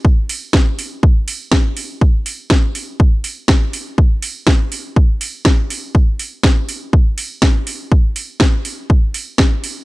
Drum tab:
HH |-o-o-o-o|-o-o-o-o|-o-o-o-o|-o-o-o-o|
SD |--o---o-|--o---o-|--o---o-|--o---o-|
BD |o-o-o-o-|o-o-o-o-|o-o-o-o-|o-o-o-o-|

HH |-o-o-o-o|
SD |--o---o-|
BD |o-o-o-o-|